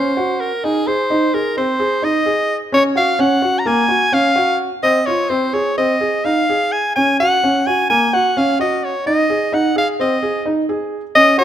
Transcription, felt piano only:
Already playing: C#4
0.17 F#4
0.64 D#4
0.87 G#4
1.10 D#4
1.34 G#4
1.57 C4
1.80 G#4
2.02 D#4
2.26 G#4
2.72 C#4
2.96 F#4
3.19 C#4
3.42 F#4
3.66 A#3
3.89 F#4
4.12 C#4
4.36 F#4
4.83 C4
5.07 F4
5.30 C4
5.53 G#4
5.78 C4
6.01 G#4
6.25 D#4
6.50 G#4
6.96 C#4
7.20 F#4
7.43 C#4
7.67 F#4
7.90 A#3
8.13 F#4
8.37 C#4
8.59 F#4
9.06 D#4
9.30 G#4
9.52 D#4
9.76 G#4
10.00 C4
10.23 G#4
10.46 D#4
10.69 G#4
11.15 C#4
11.38 F#4

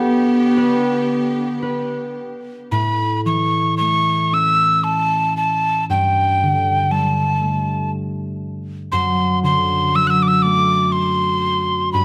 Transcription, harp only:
Already playing: B3 G4 A4
0.57 B4
1.62 B4
2.72 A2
3.25 E3
3.80 A3
4.32 C#4
5.89 G2
6.42 D3
6.91 G3
7.41 A3
8.93 F#2
9.43 D3
9.94 F#3
10.44 A3
11.94 G2

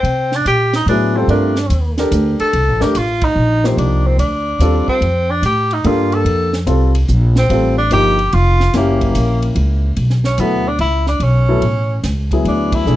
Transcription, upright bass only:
0.03 C3
0.45 A#2
0.86 A2
1.28 G2
1.70 D#2
2.11 D2
2.40 muted upright bass stroke
2.53 C2
2.68 A1
2.81 G1
2.95 A1
3.36 A#1
3.77 C2
4.18 D2
4.59 D#2
4.87 muted upright bass stroke
5.01 F2
5.42 A2
5.84 G2
6.25 F2
6.66 C2
7.09 A#1
7.50 A1
7.91 G1
8.33 F1
8.74 F#1
9.15 A#1
9.56 C#2
9.97 B1
10.38 D2
10.79 C#2
11.20 B1
11.61 A1
12.04 C#2
12.45 D2
12.86 B1

